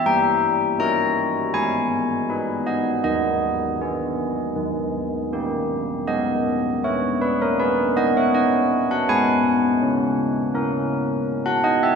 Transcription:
\new Staff \with { instrumentName = "Church bells" } { \time 4/4 \key gis \minor \tempo 4 = 80 << { g''4 ais''4 gis''4. dis''8 | dis''2. r4 | dis''4 cis''8 b'16 ais'16 b'8 dis''16 cis''16 dis''8. fis''16 | gis''2.~ gis''16 fis''16 dis''16 e''16 | } \\ { g4 <dis' cis''>4 gis4 <dis' b'>4 | dis4 <b gis'>4 dis4 <ais g'>4 | gis4 b4 <b gis'>2 | gis4 cis'4 <cis' ais'>2 | } >> }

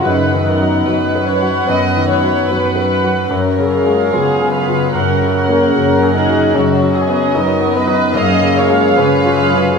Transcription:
<<
  \new Staff \with { instrumentName = "Viola section" } { \time 4/4 \key b \lydian \tempo 4 = 74 <b' fis''>8 <b fis''>4 <b' fis''>4 <b' fis''>4 <b' fis''>8 | r8 <gis' eis''>4 <gis' eis''>8 <ais' fis''>8 <ais' fis''>4 <ais' fis''>8 | r8 <b dis''>4 <b' dis''>8 <gis' eis''>8 <gis' eis''>4 <gis' eis''>8 | }
  \new Staff \with { instrumentName = "Violin section" } { \time 4/4 \key b \lydian b'8 ais'8 b'8 cis''8 dis''8 cis''8 b'4 | ais'4 gis'8 b'8 ais'4 ais'8 gis'8 | fis'8 gis'8 ais'8 b'8 dis''8 cis''8 b'4 | }
  \new Staff \with { instrumentName = "French horn" } { \time 4/4 \key b \lydian dis'4. cis'8 b4. r8 | cis'4 b4 cis'4. dis'8 | cis'4. b8 ais4 cis'8 r8 | }
  \new Staff \with { instrumentName = "Grand piano" } { \time 4/4 \key b \lydian \tuplet 3/2 { fis,8 dis8 fis8 fis'8 b'8 fis'8 fis,8 dis8 fis8 fis'8 b'8 fis'8 } | \tuplet 3/2 { fis,8 cis8 gis8 eis'8 gis'8 eis'8 fis,8 cis8 ais8 fis'8 gis'8 fis'8 } | \tuplet 3/2 { fis,8 fis8 b8 dis'8 fis'8 dis'8 fis,8 cis8 gis8 cis'8 eis'8 cis'8 } | }
  \new Staff \with { instrumentName = "Harp" } { \time 4/4 \key b \lydian \tuplet 3/2 { <fis, cis'>8 dis''8 fis'8 fis8 fis'8 fis8 b8 b'8 fis'8 fis8 fis'8 fis8 } | \tuplet 3/2 { fis,8 gis'8 eis'8 cis4 cis8 fis,8 ais'8 gis'8 cis8 gis'8 cis8 } | \tuplet 3/2 { fis,8 b8 fis'8 fis8 fis'8 fis8 fis,8 gis'8 eis'8 cis8 eis'8 cis8 } | }
  \new Staff \with { instrumentName = "Cello section" } { \clef bass \time 4/4 \key b \lydian fis,4 fis,4 fis,4 fis,4 | fis,4 fis,4 fis,4 fis,4 | fis,4 fis,4 fis,4 fis,4 | }
>>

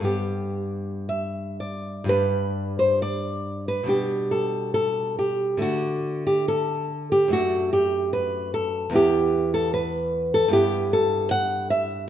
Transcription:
\new Staff \with { instrumentName = "Nylon-string guitar" } { \time 2/4 \key g \major \tempo 4 = 71 << { g'4 e''8 d''8 | b'8. c''16 d''8. b'16 | g'8 a'8 a'8 g'8 | fis'8. g'16 a'8. g'16 |
fis'8 g'8 b'8 a'8 | g'8. a'16 b'8. a'16 | g'8 a'8 fis''8 e''8 | } \\ { <g, g b>2 | <g, g d'>2 | <b, g d'>2 | <d a d'>2 |
<fis, a d'>2 | <e, b e'>2 | <g, b e'>2 | } >> }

